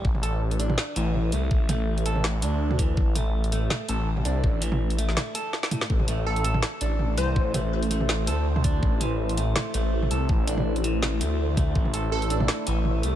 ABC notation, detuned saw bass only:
X:1
M:4/4
L:1/8
Q:"Swing 16ths" 1/4=164
K:Am
V:1 name="Detuned saw bass" clef=bass
A,,,4 z A,,,2 C,, | A,,,4- A,,, D,,3 | A,,,4 z A,,,2 C,, | A,,,4 z4 |
A,,,4 z A,,,2 C,, | A,,,4- A,,, D,,3 | A,,,4 z A,,,2 C,, | A,,,4- A,,, D,,3 |
A,,,4 z A,,,2 C,, |]